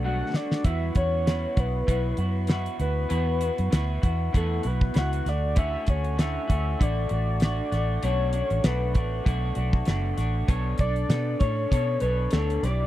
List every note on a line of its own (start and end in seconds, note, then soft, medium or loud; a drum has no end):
0.00 0.22 B1 medium
0.00 0.34 B2 medium
0.00 0.62 G3 medium
0.00 0.61 B3 medium
0.00 0.62 F#4 medium
0.04 0.35 A3 medium
0.04 0.34 D4 medium
0.04 0.32 F#4 medium
0.04 0.37 F#5 loud
0.33 0.64 A3 soft
0.33 0.65 D4 soft
0.33 0.65 F#4 medium
0.33 0.64 D5 loud
0.33 snare medium
0.52 snare medium
0.64 0.89 E2 medium
0.64 0.95 E3 medium
0.64 0.96 B3 medium
0.64 0.96 E4 medium
0.64 0.94 F#4 medium
0.64 0.94 E5 loud
0.64 kick loud
0.64 closed hi-hat medium
0.95 1.45 E2 medium
0.95 1.27 E4 soft
0.95 1.26 F#4 soft
0.95 1.61 C#5 medium
0.95 kick medium
0.95 closed hi-hat medium
0.99 1.26 B3 soft
1.26 1.57 E3 medium
1.26 1.58 B3 medium
1.26 1.57 E4 medium
1.26 1.55 F#4 medium
1.26 snare loud
1.26 closed hi-hat medium
1.56 1.82 B1 medium
1.56 1.86 B3 soft
1.56 1.87 E4 soft
1.56 1.88 F#4 medium
1.56 2.51 B4 medium
1.56 kick medium
1.56 closed hi-hat medium
1.87 2.12 B1 medium
1.87 2.18 E3 medium
1.87 2.19 B3 medium
1.87 2.19 E4 medium
1.87 2.17 F#4 medium
1.87 kick medium
1.87 closed hi-hat medium
2.17 2.67 F#2 medium
2.17 2.49 E4 soft
2.17 2.49 F#4 medium
2.17 closed hi-hat medium
2.21 2.49 B3 soft
2.47 2.80 E3 medium
2.47 2.81 B3 medium
2.47 2.80 E4 medium
2.47 snare loud
2.47 closed hi-hat medium
2.51 2.77 F#4 medium
2.66 closed hi-hat medium
2.79 3.05 D2 medium
2.79 3.09 B3 soft
2.79 3.10 E4 soft
2.79 3.10 F#4 medium
2.79 4.00 B4 loud
2.79 closed hi-hat medium
3.09 3.49 E2 medium
3.09 3.41 E3 medium
3.09 3.41 B3 medium
3.09 3.40 E4 medium
3.09 3.39 F#4 medium
3.09 closed hi-hat medium
3.40 3.71 B3 soft
3.40 3.72 E4 soft
3.40 3.72 F#4 medium
3.40 closed hi-hat medium
3.58 3.70 F#2 medium
3.58 closed hi-hat soft
3.71 3.97 D2 medium
3.71 4.02 E3 medium
3.71 4.03 B3 medium
3.71 4.02 E4 medium
3.71 4.01 F#4 medium
3.71 snare loud
3.71 closed hi-hat medium
4.02 4.28 E2 medium
4.02 4.33 B3 soft
4.02 4.33 E4 medium
4.02 4.33 F#4 medium
4.02 kick medium
4.02 closed hi-hat medium
4.33 4.59 E2 medium
4.33 4.64 E3 medium
4.33 4.65 B3 medium
4.33 4.64 E4 medium
4.33 4.62 F#4 medium
4.33 4.68 A4 loud
4.33 kick medium
4.33 closed hi-hat medium
4.63 4.90 B1 medium
4.63 4.94 B3 soft
4.63 4.95 E4 medium
4.63 4.95 F#4 medium
4.63 closed hi-hat medium
4.67 5.00 B4 loud
4.81 kick medium
4.94 5.20 C#2 medium
4.94 5.26 E3 medium
4.94 5.26 B3 medium
4.94 5.27 E4 medium
4.94 5.23 F#4 medium
4.94 snare loud
4.94 closed hi-hat medium
4.98 5.30 F#5 loud
5.13 closed hi-hat medium
5.25 5.75 D2 loud
5.25 5.55 A3 soft
5.25 5.56 F#4 soft
5.25 snare soft
5.25 closed hi-hat medium
5.29 5.58 D5 loud
5.55 5.87 D3 medium
5.55 5.88 A3 medium
5.55 5.87 C#4 medium
5.55 5.84 F#4 medium
5.55 5.91 E5 loud
5.55 kick loud
5.55 closed hi-hat medium
5.85 6.37 D2 medium
5.85 6.17 A3 soft
5.85 6.18 C#4 soft
5.85 6.17 F#4 soft
5.85 kick medium
5.85 closed hi-hat medium
5.90 6.21 C#5 medium
6.04 closed hi-hat soft
6.17 6.49 D3 medium
6.17 6.49 A3 medium
6.17 6.48 C#4 medium
6.17 6.46 F#4 medium
6.17 6.83 E5 loud
6.17 snare loud
6.17 closed hi-hat medium
6.48 6.74 D2 medium
6.48 6.78 A3 soft
6.48 6.80 C#4 medium
6.48 6.79 F#4 medium
6.48 kick medium
6.48 closed hi-hat medium
6.79 7.05 A1 medium
6.79 7.10 D3 medium
6.79 7.11 A3 medium
6.79 7.08 F#4 medium
6.79 8.05 D5 loud
6.79 kick medium
6.79 closed hi-hat medium
7.09 7.60 A1 medium
7.09 7.41 A3 soft
7.09 7.41 F#4 medium
7.09 closed hi-hat medium
7.40 7.72 D3 medium
7.40 7.73 A3 medium
7.40 snare loud
7.40 closed hi-hat medium
7.44 7.70 F#4 medium
7.72 7.97 A1 medium
7.72 8.02 A3 soft
7.72 8.03 F#4 medium
7.72 snare soft
7.72 closed hi-hat medium
8.03 8.41 B1 loud
8.03 8.34 B2 medium
8.03 8.34 A3 medium
8.03 8.33 D4 medium
8.03 8.31 F#4 medium
8.03 8.67 C#5 loud
8.03 closed hi-hat medium
8.33 8.64 A3 soft
8.33 8.65 D4 soft
8.33 8.64 F#4 soft
8.33 closed hi-hat medium
8.50 8.62 A1 medium
8.50 closed hi-hat soft
8.64 8.95 B1 loud
8.64 8.95 B2 medium
8.64 8.96 A3 medium
8.64 8.94 D4 medium
8.64 8.93 F#4 medium
8.64 9.26 B4 medium
8.64 snare loud
8.64 closed hi-hat medium
8.94 9.20 A1 medium
8.94 9.24 A3 soft
8.94 9.25 D4 medium
8.94 9.25 F#4 medium
8.94 kick medium
8.94 closed hi-hat medium
9.24 9.51 B1 medium
9.24 9.56 B2 medium
9.24 9.56 A3 medium
9.24 9.56 D4 medium
9.24 9.54 F#4 medium
9.24 kick medium
9.24 closed hi-hat medium
9.55 9.81 B1 medium
9.55 9.87 A3 soft
9.55 9.88 D4 medium
9.55 9.87 F#4 medium
9.55 closed hi-hat medium
9.73 kick medium
9.85 10.12 F#1 medium
9.85 10.18 B2 medium
9.85 10.18 A3 medium
9.85 10.17 D4 medium
9.85 snare loud
9.85 closed hi-hat medium
9.89 10.16 F#4 medium
10.17 10.42 A1 medium
10.17 10.49 A3 soft
10.17 10.48 D4 medium
10.17 10.48 F#4 medium
10.17 snare soft
10.17 closed hi-hat medium
10.48 10.73 B1 medium
10.48 10.79 B3 medium
10.48 10.80 D4 medium
10.48 10.79 A4 medium
10.48 10.80 C#5 loud
10.48 kick loud
10.48 closed hi-hat medium
10.78 11.04 B1 medium
10.78 11.09 D4 soft
10.78 11.10 A4 soft
10.78 11.37 D5 loud
10.78 kick medium
10.78 closed hi-hat medium
10.96 closed hi-hat soft
11.09 11.34 B2 loud
11.09 11.41 B3 medium
11.09 11.41 D4 medium
11.09 11.40 A4 medium
11.09 snare loud
11.09 closed hi-hat medium
11.40 11.65 A2 medium
11.40 11.71 D4 soft
11.40 11.72 A4 soft
11.40 11.71 C#5 medium
11.40 12.02 C#5 loud
11.40 kick medium
11.40 closed hi-hat medium
11.71 11.96 B2 medium
11.71 12.02 B3 medium
11.71 12.03 D4 medium
11.71 12.02 A4 medium
11.71 12.00 C#5 medium
11.71 kick medium
11.71 closed hi-hat medium
12.00 12.27 B1 medium
12.00 12.34 A4 soft
12.00 12.33 B4 loud
12.00 12.33 C#5 medium
12.00 closed hi-hat medium
12.05 12.32 D4 soft
12.31 12.57 D2 medium
12.31 12.64 B3 medium
12.31 12.64 D4 medium
12.31 12.64 A4 loud
12.31 12.65 A4 medium
12.31 snare loud
12.31 closed hi-hat medium
12.35 12.63 C#5 medium
12.50 closed hi-hat medium
12.63 12.87 B1 medium
12.63 12.87 E4 soft
12.63 12.87 G4 medium
12.63 12.87 D5 loud
12.63 12.87 D5 medium
12.63 snare soft
12.63 closed hi-hat medium